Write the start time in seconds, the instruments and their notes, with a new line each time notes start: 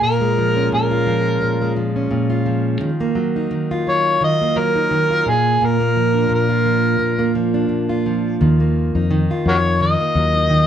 Already playing: steel-string acoustic guitar A#3 F4
0.01 steel-string acoustic guitar A#2, harmonica A#4
0.21 steel-string acoustic guitar G#3
0.38 steel-string acoustic guitar F3
0.56 steel-string acoustic guitar C#4
0.72 steel-string acoustic guitar A#2, harmonica A#4
0.91 steel-string acoustic guitar F4
1.07 steel-string acoustic guitar F3
1.42 steel-string acoustic guitar A#2
1.62 steel-string acoustic guitar G#3
1.76 steel-string acoustic guitar F3
1.96 steel-string acoustic guitar C#4
2.11 steel-string acoustic guitar A#2
2.30 steel-string acoustic guitar F4
2.46 steel-string acoustic guitar F3
2.81 steel-string acoustic guitar D#3
3.00 steel-string acoustic guitar A#3
3.15 steel-string acoustic guitar F#3
3.36 steel-string acoustic guitar D#4
3.51 steel-string acoustic guitar D#3
3.71 steel-string acoustic guitar F4
3.87 steel-string acoustic guitar F#3, harmonica C#5
4.21 steel-string acoustic guitar D#3, harmonica D#5
4.41 steel-string acoustic guitar A#3
4.56 steel-string acoustic guitar F#3, harmonica A#4
4.76 steel-string acoustic guitar D#4
4.91 steel-string acoustic guitar D#3
5.10 steel-string acoustic guitar F4
5.26 steel-string acoustic guitar A#2, harmonica G#4
5.61 steel-string acoustic guitar A#2, harmonica A#4
5.80 steel-string acoustic guitar A#3
5.96 steel-string acoustic guitar F3
6.14 steel-string acoustic guitar D4
6.29 steel-string acoustic guitar A#2
6.34 harmonica A#4
6.49 steel-string acoustic guitar F4
6.66 steel-string acoustic guitar F3
6.99 steel-string acoustic guitar A#2
7.19 steel-string acoustic guitar A#3
7.35 steel-string acoustic guitar F3
7.54 steel-string acoustic guitar D4
7.69 steel-string acoustic guitar A#2
7.89 steel-string acoustic guitar F4
8.06 steel-string acoustic guitar F3
8.41 fingered electric bass D#2, steel-string acoustic guitar D#3
8.60 steel-string acoustic guitar A#3
8.95 fingered electric bass F2, steel-string acoustic guitar D#4
9.11 steel-string acoustic guitar D#3
9.31 steel-string acoustic guitar F4
9.46 fingered electric bass F2, harmonica F#4 A#4 C#5
9.81 steel-string acoustic guitar D#3, harmonica D#5
10.01 steel-string acoustic guitar A#3
10.15 fingered electric bass D#2, steel-string acoustic guitar F#3
10.35 steel-string acoustic guitar D#4
10.50 steel-string acoustic guitar D#3